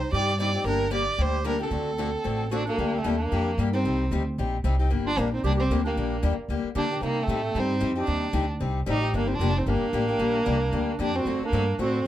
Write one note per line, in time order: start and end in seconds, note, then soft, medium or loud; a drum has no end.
0.00 0.10 D#4 medium
0.00 0.11 C5 medium
0.12 0.55 G2 medium
0.12 0.32 C3 medium
0.12 0.32 G3 medium
0.12 0.32 C4 medium
0.12 0.32 D#4 medium
0.12 0.37 G4 medium
0.12 0.32 G4 medium
0.12 0.38 D5 loud
0.40 0.50 C3 medium
0.40 0.50 G3 medium
0.40 0.50 C4 medium
0.40 0.50 D#4 medium
0.40 0.64 G4 medium
0.40 0.50 G4 medium
0.40 0.65 D5 medium
0.54 0.66 C4 soft
0.54 0.66 D#4 soft
0.54 0.65 G4 medium
0.64 1.07 G1 medium
0.64 0.84 D3 medium
0.64 0.84 G3 medium
0.64 0.84 A#3 medium
0.64 0.84 D4 medium
0.64 0.91 D4 medium
0.64 0.84 G4 medium
0.64 0.91 A#4 loud
0.90 1.01 D3 medium
0.90 1.02 G3 medium
0.90 1.02 A#3 medium
0.90 1.02 D4 loud
0.90 1.02 G4 loud
0.90 1.21 G4 medium
0.90 1.23 D5 medium
1.18 1.61 D2 medium
1.18 1.37 D3 medium
1.18 1.37 G3 medium
1.18 1.37 A#3 medium
1.18 1.37 D4 medium
1.18 1.37 G4 medium
1.18 1.46 G4 medium
1.18 1.47 C5 medium
1.44 1.55 D3 medium
1.44 1.55 G3 medium
1.44 1.55 A#3 medium
1.44 1.55 D4 medium
1.44 1.60 D4 medium
1.44 1.56 G4 medium
1.44 1.60 A#4 medium
1.59 1.71 A#3 soft
1.59 2.48 C4 medium
1.59 1.71 D4 medium
1.59 1.71 G4 medium
1.59 2.49 A4 medium
1.71 2.14 D2 medium
1.71 1.89 D3 medium
1.71 1.90 A3 medium
1.71 1.90 C4 medium
1.71 1.90 F#4 medium
1.71 1.90 A4 medium
1.98 2.09 D3 medium
1.98 2.08 A3 medium
1.98 2.09 C4 medium
1.98 2.09 F#4 medium
1.98 2.09 A4 medium
2.24 2.67 A1 medium
2.24 2.43 D3 medium
2.24 2.43 A3 medium
2.24 2.43 C4 medium
2.24 2.43 F#4 medium
2.24 2.43 A4 medium
2.51 2.62 D3 medium
2.51 2.62 A3 medium
2.51 2.62 C4 medium
2.51 2.66 D4 medium
2.51 2.65 F#4 medium
2.51 2.62 F#4 medium
2.51 2.62 A4 medium
2.65 2.99 A#3 medium
2.65 2.78 C4 soft
2.65 2.97 D4 medium
2.65 2.78 F#4 medium
2.65 2.78 A4 medium
2.78 3.04 D2 medium
2.78 2.97 D3 medium
2.78 2.96 G3 medium
2.78 2.96 A#3 medium
2.78 2.97 D4 medium
2.78 2.97 G4 medium
2.95 3.23 A3 medium
2.95 3.20 C4 medium
3.04 3.30 D#2 medium
3.04 3.15 D3 medium
3.04 3.14 G3 medium
3.04 3.15 A#3 medium
3.04 3.15 D4 medium
3.04 3.15 G4 medium
3.18 3.59 A#3 medium
3.18 3.57 D4 medium
3.32 3.57 F2 medium
3.32 3.50 D3 medium
3.32 3.50 G3 medium
3.32 3.50 A#3 medium
3.32 3.50 D4 medium
3.32 3.50 G4 medium
3.58 3.83 G2 medium
3.58 3.68 D3 medium
3.58 3.68 G3 medium
3.58 3.68 A#3 medium
3.58 3.68 D4 medium
3.58 3.69 G4 medium
3.72 3.85 A#3 soft
3.72 4.22 C4 medium
3.72 3.85 D4 medium
3.72 4.21 D#4 medium
3.72 3.84 G4 medium
3.85 4.10 C2 medium
3.85 4.03 C3 medium
3.85 4.03 G3 medium
3.85 4.03 C4 medium
3.85 4.03 D#4 medium
3.85 4.03 G4 medium
4.11 4.37 D2 medium
4.11 4.21 C3 medium
4.11 4.22 G3 medium
4.11 4.22 C4 medium
4.11 4.22 D#4 medium
4.11 4.22 G4 medium
4.38 4.64 A#1 medium
4.38 4.56 C3 medium
4.38 4.56 G3 medium
4.38 4.56 C4 medium
4.38 4.56 D#4 medium
4.38 4.56 G4 medium
4.64 4.90 C2 medium
4.64 4.74 C3 medium
4.64 4.74 G3 medium
4.64 4.74 C4 medium
4.64 4.74 D#4 medium
4.64 4.75 G4 medium
4.79 4.90 C4 soft
4.79 4.90 D#4 medium
4.79 4.90 G4 medium
4.90 5.16 G1 medium
4.90 5.08 D3 medium
4.90 5.09 G3 medium
4.90 5.09 A#3 medium
4.90 5.09 D4 medium
4.90 5.09 G4 medium
5.06 5.21 D4 loud
5.06 5.20 F4 medium
5.17 5.43 A#1 medium
5.17 5.27 D3 medium
5.17 5.27 G3 medium
5.17 5.28 A#3 medium
5.17 5.33 A#3 medium
5.17 5.28 D4 medium
5.17 5.31 D4 medium
5.17 5.28 G4 medium
5.31 5.44 C4 medium
5.31 5.42 D#4 medium
5.44 5.69 C2 medium
5.44 5.62 D3 medium
5.44 5.62 G3 medium
5.44 5.62 A#3 medium
5.44 5.62 D4 medium
5.44 5.52 D4 loud
5.44 5.50 G4 medium
5.44 5.62 G4 medium
5.57 5.84 C4 medium
5.57 5.82 G4 medium
5.70 5.96 D2 medium
5.70 5.80 D3 medium
5.70 5.80 G3 medium
5.70 5.81 A#3 loud
5.70 5.81 D4 medium
5.70 5.81 G4 medium
5.84 6.35 A#3 medium
5.84 5.97 A#3 soft
5.84 6.34 D4 medium
5.84 5.97 D4 medium
5.84 5.96 G4 medium
5.96 6.22 A#1 medium
5.96 6.15 D3 medium
5.96 6.15 G3 medium
5.96 6.15 A#3 medium
5.96 6.15 D4 medium
5.96 6.15 G4 medium
6.23 6.37 D#2 medium
6.23 6.33 D3 medium
6.23 6.33 G3 medium
6.23 6.33 A#3 medium
6.23 6.33 D4 loud
6.23 6.33 G4 medium
6.38 muted upright bass stroke soft
6.49 6.63 D2 medium
6.49 6.68 D3 medium
6.49 6.68 G3 medium
6.49 6.68 A#3 medium
6.49 6.68 D4 medium
6.49 6.68 G4 medium
6.64 muted upright bass stroke soft
6.75 6.86 D3 medium
6.75 7.01 D3 medium
6.75 6.86 G3 medium
6.75 6.86 A#3 medium
6.75 6.86 D4 medium
6.75 7.01 D4 medium
6.75 6.86 G4 medium
6.75 7.01 G4 medium
6.91 7.03 A#3 soft
6.91 7.03 D4 soft
6.91 7.02 G4 medium
7.01 7.27 C3 medium
7.01 7.21 C3 medium
7.01 7.21 G3 medium
7.01 7.25 A#3 medium
7.01 7.21 C4 medium
7.01 7.22 D#4 medium
7.01 7.21 D#4 medium
7.01 7.21 G4 medium
7.21 7.61 A3 medium
7.21 7.58 C4 medium
7.27 7.54 A2 medium
7.27 7.39 C3 medium
7.27 7.39 G3 medium
7.27 7.39 C4 medium
7.27 7.39 D#4 medium
7.27 7.39 G4 medium
7.54 7.81 G2 medium
7.54 7.73 C3 medium
7.54 7.74 G3 medium
7.54 7.74 C4 medium
7.54 7.74 D#4 medium
7.54 7.83 D#4 medium
7.54 7.74 G4 medium
7.60 7.84 C4 loud
7.80 8.07 F2 medium
7.80 7.91 C3 medium
7.80 7.91 G3 medium
7.80 7.91 C4 medium
7.80 7.91 D#4 medium
7.80 7.92 G4 medium
7.95 8.06 C4 soft
7.95 8.06 D#4 medium
7.95 8.06 G4 medium
7.95 8.47 G4 medium
8.00 8.48 D4 medium
8.06 8.33 D#2 medium
8.06 8.25 C3 medium
8.06 8.26 G3 medium
8.06 8.26 C4 medium
8.06 8.26 D#4 medium
8.06 8.26 G4 medium
8.33 8.60 D2 medium
8.33 8.44 C3 medium
8.33 8.44 G3 medium
8.33 8.44 C4 medium
8.33 8.44 D#4 medium
8.33 8.44 G4 medium
8.60 8.87 C2 medium
8.60 8.79 C3 medium
8.60 8.79 G3 medium
8.60 8.79 C4 medium
8.60 8.79 D#4 medium
8.60 8.79 G4 medium
8.86 9.13 A1 medium
8.86 8.97 C3 medium
8.86 8.97 G3 medium
8.86 8.98 C4 medium
8.86 8.98 D#4 medium
8.86 8.98 G4 medium
8.86 9.13 G4 medium
8.90 9.14 D#4 medium
9.01 9.14 C4 soft
9.01 9.14 D#4 medium
9.01 9.13 G4 medium
9.13 9.39 G1 medium
9.13 9.32 D3 medium
9.13 9.32 G3 medium
9.13 9.33 A#3 medium
9.13 9.29 A#3 medium
9.13 9.33 D4 medium
9.13 9.27 D4 medium
9.13 9.33 G4 medium
9.25 9.37 C4 medium
9.25 9.34 D#4 medium
9.33 9.60 D4 medium
9.33 9.59 F4 medium
9.39 9.66 F1 medium
9.39 9.51 D3 medium
9.39 9.51 G3 medium
9.39 9.51 A#3 medium
9.39 9.51 D4 medium
9.39 9.51 G4 loud
9.57 9.69 C4 medium
9.57 9.68 D#4 medium
9.66 9.80 G1 medium
9.66 9.85 D3 medium
9.66 9.85 G3 medium
9.66 9.85 A#3 medium
9.66 9.85 D4 medium
9.66 10.97 D4 medium
9.66 9.86 G4 medium
9.70 10.97 A#3 loud
9.93 10.18 A1 medium
9.93 10.04 D3 medium
9.93 10.04 G3 medium
9.93 10.04 A#3 medium
9.93 10.04 D4 medium
9.93 10.04 G4 medium
10.08 10.18 A#3 soft
10.08 10.18 D4 medium
10.08 10.19 G4 medium
10.19 10.45 A#1 medium
10.19 10.38 D3 medium
10.19 10.38 G3 medium
10.19 10.38 A#3 medium
10.19 10.38 D4 medium
10.19 10.38 G4 medium
10.45 10.71 C2 medium
10.45 10.56 D3 medium
10.45 10.56 G3 medium
10.45 10.57 A#3 medium
10.45 10.57 D4 medium
10.45 10.57 G4 medium
10.72 10.98 D2 medium
10.72 10.91 D3 medium
10.72 10.91 G3 medium
10.72 10.91 A#3 medium
10.72 10.91 D4 medium
10.72 10.92 G4 medium
10.99 11.25 F2 medium
10.99 11.10 D3 medium
10.99 11.10 G3 medium
10.99 11.10 A#3 medium
10.99 11.10 D4 medium
10.99 11.17 D4 medium
10.99 11.10 G4 medium
10.99 11.17 G4 medium
11.14 11.26 A#3 soft
11.14 11.45 C4 medium
11.14 11.26 D4 soft
11.14 11.45 F#4 medium
11.14 11.25 G4 medium
11.25 11.39 F#2 medium
11.25 11.44 D3 medium
11.25 11.45 A3 medium
11.25 11.45 C4 medium
11.25 11.45 F#4 medium
11.25 11.45 A4 medium
11.40 muted upright bass stroke soft
11.45 11.78 A#3 medium
11.45 11.78 D4 medium
11.52 11.78 G2 medium
11.52 11.63 D3 medium
11.52 11.63 A3 medium
11.52 11.63 C4 medium
11.52 11.63 F#4 medium
11.52 11.63 A4 medium
11.78 12.05 A2 medium
11.78 11.97 D3 medium
11.78 11.98 A3 medium
11.78 11.98 C4 medium
11.78 12.06 C4 medium
11.78 11.98 F#4 medium
11.78 12.05 F#4 medium
11.78 11.98 A4 medium